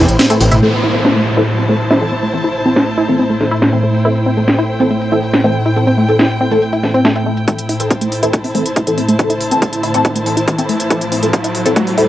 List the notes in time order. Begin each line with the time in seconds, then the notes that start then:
Already playing: A2 E4 C5 G5
0.09 A1, closed hi-hat, tambourine
0.19 C4, snare, closed hi-hat, ride, tambourine
0.30 E3 A3 C4 A4, closed hi-hat, tambourine
0.41 A1 E3 C4 A4, open hi-hat, ride, tambourine
0.51 A1 E4, closed hi-hat, mid tom, tambourine
0.62 A2 E3 A3 C4 A4, crash, downlifter
0.83 E4
0.94 E3 C4 A4 A5
1.05 C4, snare
1.16 A3
1.37 E3 C4 E4 A4
1.48 closed hi-hat
1.59 C4, closed hi-hat
1.69 E3 A3 C4 A4
1.80 closed hi-hat
1.91 E4, snare
2.01 E3 C4 A4, closed hi-hat
2.12 C4
2.23 A3, closed hi-hat
2.33 E3 C4 A4, closed hi-hat
2.44 E4, closed hi-hat
2.66 E3 C4 A4, closed hi-hat
2.76 A3, snare, closed hi-hat
2.87 closed hi-hat
2.98 E4
3.08 E3 C4 A4, closed hi-hat
3.19 C4, closed hi-hat
3.30 A3, closed hi-hat
3.41 E3 C4 A4, snare
3.51 E4, closed hi-hat
3.62 snare, closed hi-hat
3.73 E3 C4 A4, closed hi-hat
3.83 A3
3.91 G5, closed hi-hat
4.05 E3 C4 E4 A4, closed hi-hat
4.16 closed hi-hat
4.26 C4
4.37 E3 A3 C4 A4, closed hi-hat
4.48 snare, closed hi-hat
4.58 E4, closed hi-hat
4.80 E3 C4 A4, closed hi-hat
4.91 A3, closed hi-hat
5.01 closed hi-hat
5.12 E3 C4 E4 A4
5.23 closed hi-hat
5.33 C4, snare, closed hi-hat
5.44 E3 A3 C4 A4, closed hi-hat
5.66 E4, closed hi-hat
5.76 E3 C4 A4, closed hi-hat
5.87 C4, closed hi-hat
5.98 A3
6.09 E3 C4 A4, closed hi-hat
6.19 E4, snare, closed hi-hat
6.30 closed hi-hat
6.41 C4
6.51 E3 A3 C4 A4, closed hi-hat
6.62 closed hi-hat
6.73 E4, closed hi-hat
6.83 E3 C4 A4, snare
6.94 C4, closed hi-hat
7.05 A3, snare, closed hi-hat
7.16 E3 C4 A4, closed hi-hat
7.26 A3
7.37 closed hi-hat
7.48 A2 E3 A3 C4 E4 A4, kick, closed hi-hat, riser
7.58 closed hi-hat
7.69 E4 C5, open hi-hat
7.77 E3 C4 A4 A5, closed hi-hat
7.91 C4, kick, closed hi-hat
8.01 A3, closed hi-hat
8.12 open hi-hat
8.23 E3 C4 E4 A4, closed hi-hat
8.33 kick, closed hi-hat
8.44 C4, open hi-hat
8.55 E3 A3 C4 A4, open hi-hat
8.66 closed hi-hat
8.76 E4, kick, closed hi-hat
8.87 E3 C4 A4, closed hi-hat
8.98 C4, open hi-hat
9.09 A3, closed hi-hat
9.19 E3 C4 A4, kick, closed hi-hat
9.30 E4, closed hi-hat
9.41 open hi-hat
9.51 E3 C4 A4, closed hi-hat
9.62 A3, kick, closed hi-hat
9.73 closed hi-hat
9.83 E4, open hi-hat
9.94 E3 C4 A4, closed hi-hat
10.05 C4, kick, closed hi-hat
10.16 A3, closed hi-hat
10.26 E3 C4 A4, open hi-hat
10.37 E4, closed hi-hat
10.48 kick, closed hi-hat
10.58 E3 C4 A4, closed hi-hat
10.69 A3, open hi-hat
10.80 closed hi-hat
10.90 E3 C4 E4 A4, kick, closed hi-hat
11.01 closed hi-hat
11.12 C4, open hi-hat
11.23 E3 A3 C4 A4, closed hi-hat
11.33 kick, closed hi-hat
11.44 E4, closed hi-hat
11.55 open hi-hat
11.66 E3 C4 A4, closed hi-hat
11.76 A3, kick, closed hi-hat
11.87 open hi-hat
11.98 E3 C4 E4 A4, open hi-hat